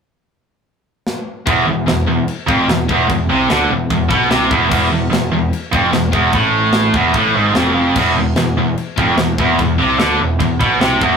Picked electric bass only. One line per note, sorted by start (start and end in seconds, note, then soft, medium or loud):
1.47 1.65 E1 loud
1.66 1.85 E1 medium
1.87 2.05 E1 medium
2.06 2.25 E1 medium
2.48 2.65 F1 medium
2.66 2.86 E1 medium
2.90 3.08 E1 medium
3.09 3.28 E1 medium
3.29 3.48 C2 medium
3.48 3.68 D2 medium
3.68 3.88 E1 medium
3.90 4.09 E1 medium
4.10 4.29 B1 loud
4.29 4.49 C2 loud
4.51 4.70 E1 loud
4.71 4.90 E1 loud
4.91 5.10 E1 medium
5.11 5.29 E1 medium
5.30 5.50 E1 medium
5.73 5.92 F1 loud
5.93 6.12 E1 medium
6.13 6.32 E1 medium
6.32 6.90 A1 medium
6.94 7.13 E1 medium
7.14 7.33 A1 medium
7.37 7.53 G#1 loud
7.54 7.92 F1 loud
7.96 8.15 E1 loud
8.16 8.35 E1 medium
8.36 8.54 E1 medium
8.55 8.75 E1 medium
8.98 9.16 F1 loud
9.16 9.36 E1 medium
9.38 9.57 E1 loud
9.59 9.78 E1 medium
9.80 9.98 C2 medium
9.99 10.18 D2 medium
10.21 10.39 E1 medium
10.41 10.59 E1 medium
10.60 10.79 B1 loud
10.80 10.99 C2 loud
11.02 11.17 E1 loud